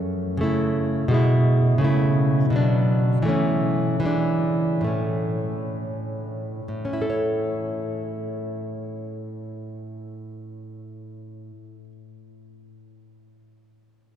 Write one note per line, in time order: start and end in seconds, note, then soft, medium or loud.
0.00 0.37 F#2 medium
0.00 0.39 A3 medium
0.00 0.40 C#4 soft
0.37 1.08 C#3 medium
0.37 1.10 A3 soft
0.43 1.13 E4 soft
1.08 1.78 B2 medium
1.08 1.81 G#3 medium
1.14 1.83 E4 medium
1.78 2.50 C#3 medium
1.78 2.53 A3 medium
1.84 2.54 E4 medium
2.50 3.24 B2 medium
2.50 3.22 F#3 medium
2.56 3.27 D4 medium
3.22 3.99 E3 medium
3.22 4.02 A3 medium
3.29 4.03 C#4 medium
4.00 4.82 E3 medium
4.00 4.84 G#3 soft
4.05 4.85 D4 soft
4.81 6.60 A2 soft
4.81 6.62 A3 soft
4.87 6.63 C#4 soft
6.68 11.51 A2 soft
6.85 7.09 C#4 soft
6.93 11.76 E4 soft
7.02 11.84 A4 soft
7.10 11.92 C#5 soft